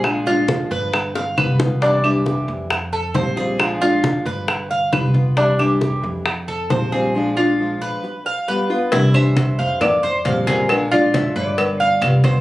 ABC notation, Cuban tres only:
X:1
M:4/4
L:1/8
Q:1/4=135
K:C
V:1 name="Cuban tres"
_A F2 B2 f B2 | D G2 z2 A c _A- | _A F2 B2 f B2 | D G2 z2 A c _A- |
_A F2 B2 f B2 | E c2 f2 c f _A- | _A F2 B2 f2 c |]